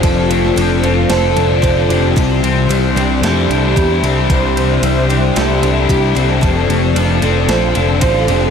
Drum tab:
RD |x-x-x-x-x-x-x-x-|x-x-x-x-x-x-x-x-|x-x-x-x-x-x-x-x-|x-x-x-x-x-x-x-x-|
SD |---o----o-------|--------o-------|--------o-------|--------o-------|
BD |o-----------o---|o-----------o---|o-----------o---|o-----------o---|